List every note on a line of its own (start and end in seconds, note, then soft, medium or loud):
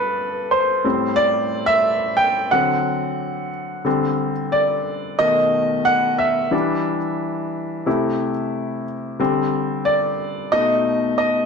0.00 0.86 G2 medium
0.00 0.85 G3 medium
0.00 0.87 D4 medium
0.00 0.87 A4 medium
0.00 0.86 B4 medium
0.51 1.20 C5 medium
0.84 2.48 A2 medium
0.84 2.48 G3 soft
0.84 2.48 C4 medium
1.16 1.69 D5 loud
1.66 2.19 E5 loud
2.17 2.49 G5 medium
2.51 3.81 D3 medium
2.51 3.82 F#3 soft
2.51 3.82 C4 medium
2.51 3.48 F#5 medium
3.85 4.29 D3 medium
3.85 4.30 G3 soft
3.85 4.30 C4 medium
4.52 5.15 D5 medium
5.19 6.49 B2 medium
5.19 6.49 D#3 medium
5.19 6.49 A3 soft
5.19 5.88 D#5 loud
5.85 6.20 F#5 medium
6.18 8.82 E5 medium
6.51 6.96 E3 medium
6.51 6.97 G3 soft
6.51 6.97 D4 medium
7.86 8.31 C3 medium
7.86 8.31 A3 soft
7.86 8.31 E4 medium
9.19 10.49 D3 medium
9.19 10.49 G3 medium
9.19 10.49 C4 medium
9.85 10.54 D5 medium
10.52 11.46 B2 medium
10.52 11.46 A3 medium
10.52 11.46 D#4 medium
10.52 11.16 D#5 medium
11.18 11.46 D#5 medium